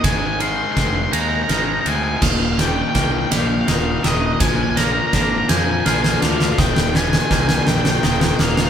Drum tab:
CC |------------|x-----------|------------|------------|
RD |x-x-x-x-x-x-|--x-x-x-x-x-|x-x-x-x-x-x-|------------|
SD |o---o---o---|o-o-o-o-o-o-|o-o-o-o-oooo|oooooooooooo|
BD |o---o-------|o---o-------|o---o-------|o---o-------|